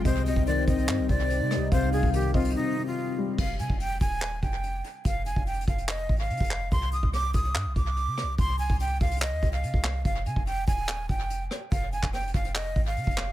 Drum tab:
CC |------------------------------------------------------------------------------------------------|------------------------------------------------------------------------------------------------|x-----------------------------------------------------------------------------------------------|------------------------------------------------------------------------------------------------|
HH |x-----------x-----------x-----------x-----x-----x-----------x-----------x-----------x-----------|x-----------o-----------x---x-------x--x--x--x--------------------------------------------------|------------x-----------x-----------x-----x-----x-----------x-----------x-----------x-----------|x-----------x-----------x---x---x---x-----x-----x-----------x---x---x---x---x---x---------------|
CP |------------------------------------------------x-----------------------------------------------|------------------------------------------------------------------------------------------------|------------------------------------------------x-----------------------------------------------|------------------------------------------------x-----------------------------------x-----------|
SD |------------------------------------------------------------------------------------r-----------|------------------------------------------------------------------------------------------------|------------------------------------------------------------------------------------------------|------------------------------------------------------------------------------------------------|
BD |o-----------------o-----------------o-----------------------o-----------------------------------|o-----------------o-----------------o-----------------------------------------------------------|o-----------------o-----------------o-----------------------o-----------------------------------|o-----------------o-----------------o-----------------------o-----------------o-----------------|

CC |------------------------------------------------------------------------------------------------|------------------------------------------------------------------------------------------------|------------------------------------------------------------------------------------------------|------------------------------------------------------------------------------------------------|
HH |x-----------x-----------x-----------x-----x-----x-----------x-----------x-----------x-----------|x-----------o-----------x---x---x---x--x--x--x--x-----------x-----x-----x-----------------------|x-----------x-----------x-----------x-----x-----x-----------x-----------x-----------x-----------|x-----------x-----------x---x---x---x-----x-----x-----------x---x---x---x---x---x---------------|
CP |------------------------------------------------x-----------------------------------------------|------------------------------------------------x-----------------------------------x-----------|------------------------------------------------x-----------------------------------------------|------------------x-----------------------------x-----------------------------------x-----------|
SD |------------------------r-----------------------------------------------------------r-----------|------------------------------------------------------------------------------------r-----------|------------------------------------------------------------------------------------r-----------|------------------------r-----------------------------------------------------------r-----------|
BD |o-----------------o-----------------o-----------------------o-----------------------------------|o-----------------o-----------------o-----------------------o-----------------o-----------------|o-----------------o-----------------o-----------------------o-----------------------------------|o-----------------o-----------------o-----------------------o-----------------o-----------------|